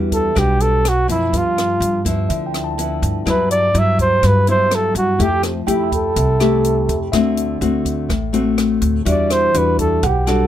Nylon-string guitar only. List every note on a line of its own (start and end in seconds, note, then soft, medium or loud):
0.00 0.33 E3 medium
0.00 0.31 G3 medium
0.00 0.32 D4 medium
0.00 0.32 F#4 medium
0.35 1.30 B2 medium
0.35 0.84 G3 medium
0.35 0.84 D4 medium
0.35 0.84 F#4 medium
1.08 2.01 F3 medium
1.08 2.01 B3 medium
1.33 2.27 G2 medium
2.05 2.74 F3 medium
2.05 2.74 B3 medium
2.05 2.74 E4 medium
2.30 3.24 D3 medium
2.78 3.24 F3 medium
2.78 3.24 B3 medium
2.78 3.24 E4 medium
3.26 4.20 G2 soft
3.26 3.70 F#3 medium
3.26 3.70 B3 medium
3.26 3.71 E4 medium
3.74 4.43 F#3 medium
3.74 4.43 B3 medium
3.74 4.43 E4 medium
4.22 5.17 G2 medium
4.48 5.16 F#3 medium
4.48 5.16 B3 medium
4.48 5.16 E4 medium
5.18 6.13 F3 medium
5.18 5.50 A3 medium
5.18 5.50 E4 medium
5.18 5.51 G4 medium
5.67 6.36 A3 medium
5.67 6.36 E4 medium
5.67 6.36 G4 medium
6.16 7.10 C3 medium
6.40 7.09 A3 medium
6.40 7.09 E4 medium
6.40 7.09 G4 medium
7.13 8.07 D3 medium
7.13 7.57 A3 medium
7.13 7.57 C4 medium
7.13 7.58 F#4 medium
7.61 8.09 A3 medium
7.61 8.09 C4 medium
7.61 8.09 F#4 medium
8.09 9.03 A2 medium
8.33 9.02 A3 medium
8.33 9.02 C4 medium
8.33 9.02 F#4 medium
9.05 10.00 E3 medium
9.05 9.50 G3 medium
9.05 9.50 D4 medium
9.05 9.51 F#4 medium
9.54 10.02 G3 medium
9.54 10.03 D4 medium
9.54 10.03 F#4 medium
10.02 10.47 B2 medium
10.27 10.47 G3 medium
10.27 10.47 D4 medium
10.27 10.47 F#4 medium